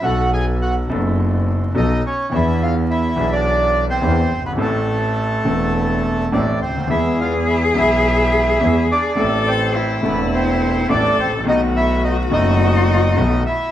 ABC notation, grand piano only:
X:1
M:4/4
L:1/16
Q:1/4=105
K:Am
V:1 name="Grand piano" clef=bass
[B,,,B,,^F,B,^DA]6 [^F,,,^F,,F,B,DA]6 [B,,,B,,F,B,DA]2 z2 | [E,,E,B,D^G]6 [B,,,B,,E,B,DG]6 [E,,E,B,DG]2 z/2 ^F,,,/2 =G,,,/2 ^G,,,/2 | [A,,,A,,E,A,CA]6 [E,,,E,,E,A,CA]6 [A,,,A,,E,A,CA]2 z/2 ^C,,/2 D,,/2 ^D,,/2 | [E,,E,^G,B,^G]6 [B,,,B,,E,G,B,G]6 [E,,E,G,B,G]2 z2 |
[A,,,A,,E,A,CA]6 [E,,,E,,E,A,CA]6 [A,,,A,,E,A,CA]2 z/2 ^G,,,/2 A,,,/2 _B,,,/2 | [B,,,B,,^D,A,B,^F]6 [^F,,,^F,,D,A,B,F]6 [B,,,B,,D,A,B,F]2 z2 |]